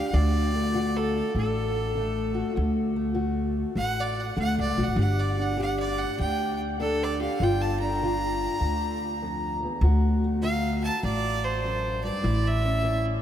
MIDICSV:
0, 0, Header, 1, 4, 480
1, 0, Start_track
1, 0, Key_signature, 2, "major"
1, 0, Tempo, 604230
1, 109, Time_signature, 4, 2, 24, 8
1, 10501, End_track
2, 0, Start_track
2, 0, Title_t, "Fiddle"
2, 0, Program_c, 0, 110
2, 0, Note_on_c, 0, 77, 79
2, 113, Note_on_c, 0, 74, 85
2, 125, Note_off_c, 0, 77, 0
2, 765, Note_on_c, 0, 69, 76
2, 777, Note_off_c, 0, 74, 0
2, 1068, Note_off_c, 0, 69, 0
2, 1088, Note_on_c, 0, 69, 80
2, 2011, Note_off_c, 0, 69, 0
2, 2997, Note_on_c, 0, 78, 92
2, 3175, Note_on_c, 0, 74, 77
2, 3187, Note_off_c, 0, 78, 0
2, 3339, Note_on_c, 0, 78, 61
2, 3351, Note_off_c, 0, 74, 0
2, 3481, Note_off_c, 0, 78, 0
2, 3489, Note_on_c, 0, 78, 85
2, 3636, Note_off_c, 0, 78, 0
2, 3659, Note_on_c, 0, 74, 76
2, 3838, Note_on_c, 0, 78, 79
2, 3850, Note_off_c, 0, 74, 0
2, 3966, Note_off_c, 0, 78, 0
2, 3971, Note_on_c, 0, 78, 74
2, 4125, Note_on_c, 0, 74, 68
2, 4137, Note_off_c, 0, 78, 0
2, 4303, Note_on_c, 0, 78, 74
2, 4315, Note_off_c, 0, 74, 0
2, 4444, Note_off_c, 0, 78, 0
2, 4462, Note_on_c, 0, 78, 75
2, 4598, Note_off_c, 0, 78, 0
2, 4602, Note_on_c, 0, 74, 73
2, 4752, Note_on_c, 0, 78, 78
2, 4764, Note_off_c, 0, 74, 0
2, 4908, Note_off_c, 0, 78, 0
2, 4923, Note_on_c, 0, 79, 82
2, 5233, Note_off_c, 0, 79, 0
2, 5406, Note_on_c, 0, 69, 86
2, 5587, Note_on_c, 0, 74, 78
2, 5599, Note_off_c, 0, 69, 0
2, 5727, Note_off_c, 0, 74, 0
2, 5731, Note_on_c, 0, 77, 70
2, 5903, Note_on_c, 0, 79, 78
2, 5915, Note_off_c, 0, 77, 0
2, 6049, Note_on_c, 0, 81, 74
2, 6061, Note_off_c, 0, 79, 0
2, 6188, Note_off_c, 0, 81, 0
2, 6193, Note_on_c, 0, 82, 86
2, 7604, Note_off_c, 0, 82, 0
2, 8276, Note_on_c, 0, 77, 93
2, 8587, Note_off_c, 0, 77, 0
2, 8610, Note_on_c, 0, 81, 75
2, 8758, Note_off_c, 0, 81, 0
2, 8776, Note_on_c, 0, 74, 89
2, 9089, Note_on_c, 0, 72, 77
2, 9101, Note_off_c, 0, 74, 0
2, 9547, Note_off_c, 0, 72, 0
2, 9565, Note_on_c, 0, 74, 80
2, 9903, Note_on_c, 0, 76, 85
2, 9915, Note_off_c, 0, 74, 0
2, 10354, Note_off_c, 0, 76, 0
2, 10501, End_track
3, 0, Start_track
3, 0, Title_t, "Steel-string acoustic guitar"
3, 0, Program_c, 1, 25
3, 0, Note_on_c, 1, 62, 55
3, 0, Note_on_c, 1, 67, 60
3, 93, Note_off_c, 1, 67, 0
3, 109, Note_on_c, 1, 38, 69
3, 114, Note_on_c, 1, 66, 64
3, 438, Note_off_c, 1, 62, 0
3, 442, Note_on_c, 1, 57, 53
3, 558, Note_off_c, 1, 38, 0
3, 587, Note_on_c, 1, 50, 62
3, 592, Note_off_c, 1, 66, 0
3, 595, Note_on_c, 1, 66, 60
3, 1037, Note_off_c, 1, 50, 0
3, 1069, Note_on_c, 1, 45, 57
3, 1518, Note_off_c, 1, 45, 0
3, 1551, Note_on_c, 1, 50, 61
3, 1554, Note_off_c, 1, 57, 0
3, 1563, Note_on_c, 1, 57, 54
3, 1853, Note_off_c, 1, 66, 0
3, 1862, Note_on_c, 1, 66, 64
3, 1999, Note_off_c, 1, 50, 0
3, 2006, Note_off_c, 1, 66, 0
3, 2028, Note_on_c, 1, 38, 63
3, 2034, Note_on_c, 1, 66, 60
3, 2343, Note_off_c, 1, 57, 0
3, 2352, Note_on_c, 1, 57, 52
3, 2478, Note_off_c, 1, 38, 0
3, 2492, Note_off_c, 1, 66, 0
3, 2497, Note_on_c, 1, 50, 60
3, 2501, Note_on_c, 1, 66, 63
3, 2953, Note_off_c, 1, 50, 0
3, 2984, Note_on_c, 1, 45, 52
3, 3437, Note_off_c, 1, 45, 0
3, 3461, Note_off_c, 1, 57, 0
3, 3468, Note_on_c, 1, 50, 61
3, 3472, Note_on_c, 1, 57, 59
3, 3786, Note_off_c, 1, 66, 0
3, 3795, Note_on_c, 1, 66, 59
3, 3920, Note_off_c, 1, 50, 0
3, 3933, Note_off_c, 1, 66, 0
3, 3945, Note_on_c, 1, 43, 65
3, 3952, Note_off_c, 1, 57, 0
3, 3952, Note_on_c, 1, 67, 56
3, 4283, Note_on_c, 1, 62, 52
3, 4398, Note_off_c, 1, 43, 0
3, 4422, Note_on_c, 1, 50, 59
3, 4426, Note_off_c, 1, 67, 0
3, 4429, Note_on_c, 1, 67, 63
3, 4877, Note_off_c, 1, 50, 0
3, 4904, Note_on_c, 1, 50, 52
3, 5359, Note_off_c, 1, 50, 0
3, 5398, Note_on_c, 1, 50, 58
3, 5399, Note_off_c, 1, 62, 0
3, 5402, Note_on_c, 1, 62, 56
3, 5716, Note_off_c, 1, 67, 0
3, 5725, Note_on_c, 1, 67, 68
3, 5846, Note_off_c, 1, 50, 0
3, 5860, Note_off_c, 1, 67, 0
3, 5890, Note_on_c, 1, 43, 68
3, 5895, Note_on_c, 1, 65, 66
3, 6203, Note_off_c, 1, 62, 0
3, 6206, Note_on_c, 1, 62, 51
3, 6332, Note_off_c, 1, 43, 0
3, 6363, Note_off_c, 1, 65, 0
3, 6373, Note_on_c, 1, 50, 62
3, 6374, Note_on_c, 1, 65, 59
3, 6814, Note_off_c, 1, 50, 0
3, 6843, Note_on_c, 1, 50, 54
3, 7289, Note_off_c, 1, 50, 0
3, 7327, Note_on_c, 1, 41, 64
3, 7645, Note_off_c, 1, 41, 0
3, 7648, Note_on_c, 1, 40, 61
3, 7781, Note_off_c, 1, 62, 0
3, 7786, Note_off_c, 1, 65, 0
3, 7801, Note_off_c, 1, 40, 0
3, 7810, Note_on_c, 1, 38, 74
3, 7814, Note_on_c, 1, 66, 65
3, 8136, Note_on_c, 1, 57, 51
3, 8252, Note_off_c, 1, 38, 0
3, 8286, Note_off_c, 1, 66, 0
3, 8289, Note_on_c, 1, 50, 58
3, 8299, Note_on_c, 1, 66, 67
3, 8731, Note_off_c, 1, 50, 0
3, 8767, Note_on_c, 1, 45, 58
3, 9210, Note_off_c, 1, 45, 0
3, 9247, Note_on_c, 1, 42, 63
3, 9559, Note_off_c, 1, 42, 0
3, 9562, Note_on_c, 1, 43, 65
3, 9707, Note_off_c, 1, 66, 0
3, 9717, Note_off_c, 1, 43, 0
3, 9717, Note_on_c, 1, 45, 63
3, 9720, Note_on_c, 1, 64, 67
3, 10044, Note_off_c, 1, 57, 0
3, 10048, Note_on_c, 1, 61, 53
3, 10164, Note_off_c, 1, 45, 0
3, 10194, Note_on_c, 1, 52, 62
3, 10203, Note_off_c, 1, 64, 0
3, 10206, Note_on_c, 1, 64, 63
3, 10501, Note_off_c, 1, 52, 0
3, 10501, Note_off_c, 1, 61, 0
3, 10501, Note_off_c, 1, 64, 0
3, 10501, End_track
4, 0, Start_track
4, 0, Title_t, "Upright bass"
4, 0, Program_c, 2, 32
4, 106, Note_on_c, 2, 38, 98
4, 953, Note_off_c, 2, 38, 0
4, 1070, Note_on_c, 2, 33, 78
4, 1916, Note_off_c, 2, 33, 0
4, 2042, Note_on_c, 2, 38, 99
4, 2883, Note_off_c, 2, 38, 0
4, 2983, Note_on_c, 2, 33, 78
4, 3410, Note_off_c, 2, 33, 0
4, 3470, Note_on_c, 2, 38, 81
4, 3616, Note_off_c, 2, 38, 0
4, 3641, Note_on_c, 2, 37, 84
4, 3784, Note_off_c, 2, 37, 0
4, 3794, Note_on_c, 2, 35, 71
4, 3865, Note_off_c, 2, 35, 0
4, 3876, Note_on_c, 2, 33, 73
4, 3937, Note_off_c, 2, 33, 0
4, 3941, Note_on_c, 2, 31, 100
4, 4793, Note_off_c, 2, 31, 0
4, 4923, Note_on_c, 2, 38, 75
4, 5765, Note_off_c, 2, 38, 0
4, 5879, Note_on_c, 2, 31, 93
4, 6723, Note_off_c, 2, 31, 0
4, 6836, Note_on_c, 2, 38, 74
4, 7682, Note_off_c, 2, 38, 0
4, 7795, Note_on_c, 2, 38, 106
4, 8641, Note_off_c, 2, 38, 0
4, 8764, Note_on_c, 2, 33, 77
4, 9605, Note_off_c, 2, 33, 0
4, 9724, Note_on_c, 2, 33, 101
4, 10501, Note_off_c, 2, 33, 0
4, 10501, End_track
0, 0, End_of_file